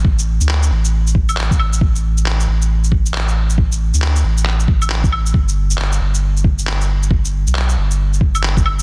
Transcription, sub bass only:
X:1
M:4/4
L:1/16
Q:"Swing 16ths" 1/4=136
K:G
V:1 name="Sub bass" clef=bass
A,,,3 D,,3 A,,,8- A,,,2 | A,,,6 A,,,8- A,,,2- | A,,,3 D,,3 A,,,8- A,,,2 | G,,,6 G,,,8- G,,,2- |
G,,,3 B,,,3 G,,,8- G,,,2 |]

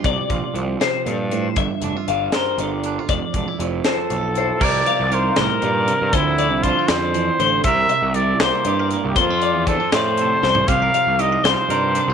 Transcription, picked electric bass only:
X:1
M:6/8
L:1/16
Q:3/8=79
K:Cmix
V:1 name="Picked electric bass" clef=bass
C,, z B,,, z C,,2 z2 G,,4 | G,,, z F,,, z G,,,2 z2 G,,,4 | F,,, z E,,, z F,,,2 z2 =B,,,4 | C,,2 z C,,3 C,, z G,,3 G,, |
D,,3 C,,2 z F,,4 A,,,2 | C,,2 z C,,3 C,, z G,,3 C,, | F,,3 E,,2 z A,,4 C,,2 | C,,2 z C,,3 C,, z G,,3 C,, |]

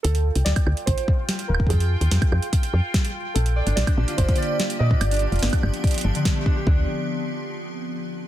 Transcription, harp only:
X:1
M:4/4
L:1/16
Q:1/4=145
K:Dm
V:1 name="Harp"
z16 | z16 | z2 d D z D D F D z4 z d D | z D D F D z4 z A D, z A, D G |
D2 z12 z2 |]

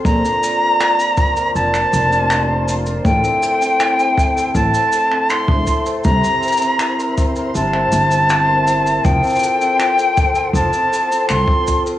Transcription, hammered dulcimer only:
X:1
M:4/4
L:1/16
Q:1/4=80
K:F
V:1 name="Hammered dulcimer"
B,, D B D F B F B B,, D B D F B F B | A,, C A C E A E A A,, C A C E A E A | C, C B C E B E B C, C B C E B E B | F, C A C F A F A F, C A C F A F A |]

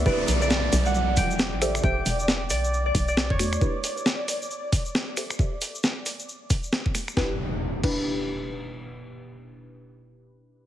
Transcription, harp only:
X:1
M:4/4
L:1/16
Q:"Swing 16ths" 1/4=135
K:Em
V:1 name="Harp"
d2 z d2 z2 f2 z g2 z4 | g2 z4 d2 z d z d z ^c2 z | z16 | z16 |
z16 | z16 |]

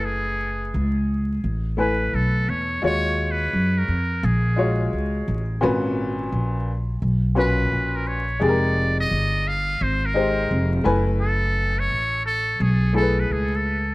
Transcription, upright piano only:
X:1
M:4/4
L:1/8
Q:"Swing 16ths" 1/4=86
K:Gb
V:1 name="Upright piano"
[=A,_Fc_a]2 z3 [=A,Fc_a]2 z | [A,FGd]3 z2 [A,FGd]2 z | [B,,DGc]3 z2 [B,,DGc]2 z | [A,E=GAB]3 z2 [A,EG=c]2 [=A,_F_c_a]- |
[=A,_Fc_a]2 z3 [=A,F_A=Ac]2 z |]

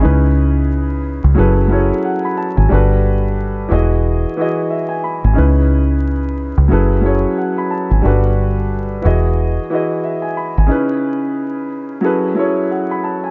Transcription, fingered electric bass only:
X:1
M:4/4
L:1/16
Q:"Swing 16ths" 1/4=90
K:C#m
V:1 name="Fingered electric bass" clef=bass
C,,6- C,, C,, F,,,4 z3 G,,, | =G,,,6 E,,,4 z4 z ^G,,, | C,,6- C,, C,, F,,,4 z3 G,,, | =G,,,6 E,,,4 z4 z ^G,,, |
z16 |]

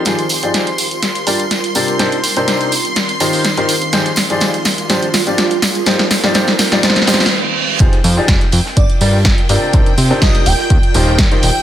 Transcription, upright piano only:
X:1
M:4/4
L:1/16
Q:"Swing 16ths" 1/4=124
K:Eb
V:1 name="Upright piano"
[F,EFGAc] z2 [F,EFGAd]2 z4 z [G,DFGBd] z3 [C,DFGBd]2 | [C,DEGBc] z2 [C,DEGBc]3 z4 [E,EFGBc]2 z [E,EFGBc] z2 | [F,EFGAc] z2 [F,EFGAd]2 z3 [F,DFGc] z2 [F,DFGd]2 z3 | [F,EFGc] z2 [F,EFGd] [F,EFGc] z2 [F,EFGd] [F,EFGc] z [F,EFGc] z4 z |
[F,EFGAc] z2 [F,EFGAd]2 z4 z [G,DFGBd] z3 [C,DFGBd]2 | [C,DEGBc] z2 [C,DEGBc]3 z4 [E,EFGBc]2 z [E,EFGBc] z2 |]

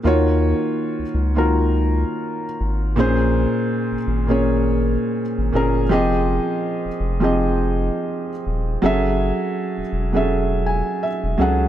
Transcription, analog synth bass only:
X:1
M:4/4
L:1/16
Q:"Swing 16ths" 1/4=82
K:Ebdor
V:1 name="Analog synth bass" clef=bass
E,,3 z2 D,, D,,4- D,, z3 A,,,2 | B,,,3 z2 A,,, A,,,4- A,,, z2 A,,, =G,,,2 | F,,,3 z2 F,,, F,,,4- F,,, z3 E,,,2 | G,,,3 z2 _F,,, F,,,4- F,,, z2 F,,, D,,2 |]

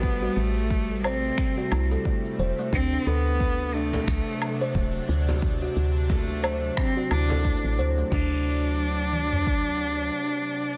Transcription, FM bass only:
X:1
M:4/4
L:1/16
Q:"Swing 16ths" 1/4=89
K:Dmix
V:1 name="FM bass" clef=bass
A,,,2 A,,,6 z2 C,, z3 E,,, z | D,, z D,,6 C,, z3 D,,, z D,,2- | D,,2 D,,6 z2 D,,3 A,,, D,, z | D,,12 z4 |]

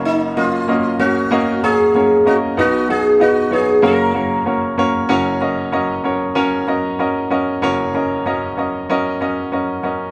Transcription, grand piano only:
X:1
M:4/4
L:1/8
Q:1/4=95
K:F#
V:1 name="Grand piano"
[A,CFAc] [A,CFAd] [A,CFAd] [A,CFAc] [A,CFAd] [A,CFAc] [A,CFAc] [A,CFAd] | [B,DFBd] [B,DFBf] [B,DFBd] [B,DFBc] [A,CFAc] [A,CFAc] [A,CFAc] [A,CFAc] | [CFAc] [CFAd] [CFAd] [CFAc] [CFAc] [CFAd] [CFAd] [CFAd] | [CFAc] [CFAd] [CFAd] [CFAd] [CFAd] [CFAd] [CFAd] [CFAd] |]
V:2 name="Grand piano" clef=bass
[F,,,F,,]6- [F,,,F,,] z | [B,,,B,,]4 [F,,,F,,]4 | [F,,,F,,]8 | [F,,,F,,]8 |]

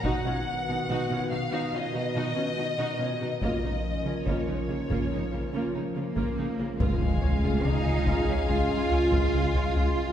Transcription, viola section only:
X:1
M:4/4
L:1/16
Q:1/4=71
K:Dbmix
V:1 name="Viola section"
[^D^F] [_D=F] z [=B,^D] [D^F] [_D=F] [^D^F] [DF] [_D=F] [^D^F] [DF] [_D=F] [^D^F] [DF] [_D=F] [^D^F] | [B,F] [A,E] z [F,D] [B,F] [A,E] [B,F] [B,F] [A,E] [B,F] [B,F] [A,E] [B,F] [B,F] [A,E] [B,F] | F z d F A z F A F A d F A d F z |]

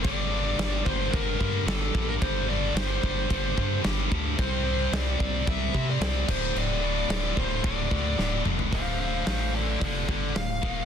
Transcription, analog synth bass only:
X:1
M:4/4
L:1/8
Q:1/4=111
K:Dm
V:1 name="Analog synth bass" clef=bass
G,,,2 G,,, G,,, G,,, G,, G,,, B,,, | G,,,2 G,,, G,,, G,,, G,, G,,, D,, | C,,2 C,, C,, C,, C, C,, D,,, | D,,,2 D,,, D,,, D,,, D,, D,,, F,,, |
D,,,2 A,,,2 F,,, G,,, D,,, _E,,, |]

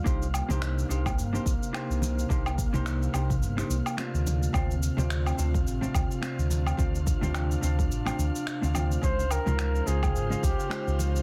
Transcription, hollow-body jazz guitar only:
X:1
M:4/4
L:1/16
Q:"Swing 16ths" 1/4=107
K:Cdor
V:1 name="Hollow-body jazz guitar"
[B,DEGc] z2 [B,DEGc]3 [B,DEGc] z2 [B,DEGc] z2 [B,DEGc]4 | [B,DEGc] z2 [B,DEGc]3 [B,DEGc] z2 [B,DEGc] z2 [A,CDFc]4 | [A,CDFc] z2 [A,CDFc]3 [A,CDFc] z2 [A,CDFc] z2 [A,CDFc]4 | [A,CDFc] z2 [A,CDFc]3 [A,CDFc] z2 [A,CDFc] z3 [A,CDFf] [A,CDFc]2 |
[_A,_DEFc] z2 [A,DEFc]3 [A,DEFc] z2 [A,DEFc] z2 [A,DEFc]4 |]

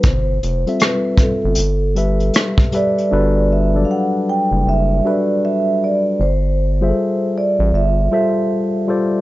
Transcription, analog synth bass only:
X:1
M:4/4
L:1/16
Q:"Swing 16ths" 1/4=78
K:G
V:1 name="Analog synth bass" clef=bass
G,,,2 =F,,, z4 G,,, G,,,4 z4 | G,,,4 z3 F,,, F,,,2 z6 | G,,,4 z3 A,,, G,,,2 z6 |]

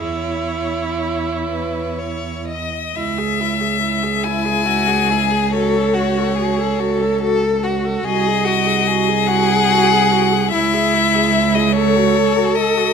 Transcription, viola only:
X:1
M:6/8
L:1/16
Q:3/8=48
K:C#m
V:1 name="Viola"
E8- E2 z2 | E G E G E G E G E G E G | F A F A F A F A F A F A | F G F G F G F G F G F G |
E G E G E G A F A F A F |]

